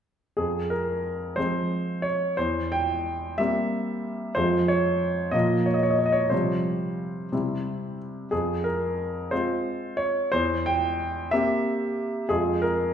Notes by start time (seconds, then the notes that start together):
0.37 F2 G#4
0.70 A#4
1.36 F3 G#3 C4 C5
2.02 C#5
2.37 E2 C5
2.72 G5
3.38 G3 A#3 C4 E5
4.35 F2 F3 G#3 F4 C5
4.68 C#5
5.31 A#2 F3 A#3 F4 D#5
5.66 C#5
5.74 D#5
5.83 C#5
5.90 D#5
5.99 C#5
6.06 D#5
6.12 C#5
6.30 C3 F3 G3 F4 C5
7.32 C3 G3 C4 E4
8.31 F2 G#4
8.64 A#4
9.31 G#3 C4 F4 C5
9.97 C#5
10.32 E2 C5
10.66 G5
11.31 A#3 C4 G4 E5
12.29 F2 G#3 C4 F4 G#4
12.62 A#4